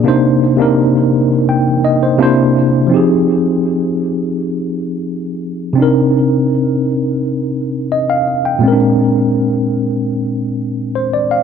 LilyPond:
\new Staff \with { instrumentName = "Tine electric piano" } { \time 4/4 \key c \minor \tempo 4 = 84 << { r2 g''8 ees''16 c''8 r8. | r1 | r2. ees''16 f''8 g''16~ | g''16 r2. c''16 d''16 f''16 | } \\ { <c bes d' ees' c''>8. <c bes d' ees' bes'>4. r8. <c bes d' e' c''>8. r16 | <f c' ees' g' aes'>1 | <c c' d' ees' bes'>1 | <bes, aes c' des' d' bes'>1 | } >> }